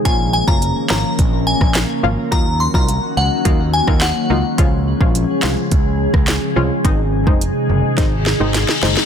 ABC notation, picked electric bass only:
X:1
M:4/4
L:1/16
Q:1/4=106
K:Bbm
V:1 name="Picked electric bass" clef=bass
B,,,3 G,,,2 z A,,, z B,,,3 B,,,2 z A,,, z | E,,3 C,,2 z D,, z E,,3 E,,2 z D,, z | D,,3 B,,,2 z C,, z D,,3 D,,2 z C,, z | A,,,3 F,,,2 z G,,, z A,,,3 A,,,2 z G,,, z |]